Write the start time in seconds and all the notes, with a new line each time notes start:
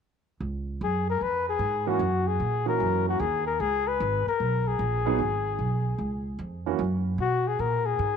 0.40 C#2
0.81 F#2 G#4
1.10 A#4
1.21 F2 B4
1.49 G#4
1.59 G#2
1.87 E3 A#3 C#4 F#4
1.99 F#2
2.28 G#4
2.40 A#2
2.66 E3 A#3 C#4 F#4 A#4
2.80 F#2
3.09 F#4
3.20 D#2 G#4
3.47 A#4
3.60 C#2 G#4
3.87 B4
4.00 G#1
4.27 A#4, muted upright bass stroke
4.40 B1
4.68 G#4
4.79 A#1
5.06 F#3 B3 D#4 G#4
5.19 G#1
5.59 B1
5.98 C#2
6.39 F2
6.66 E3 A#3 C#4 F#4
6.79 F#2
7.18 B2 F#4
7.47 G#4
7.59 A#2 A#4
7.86 G#4
7.99 G#2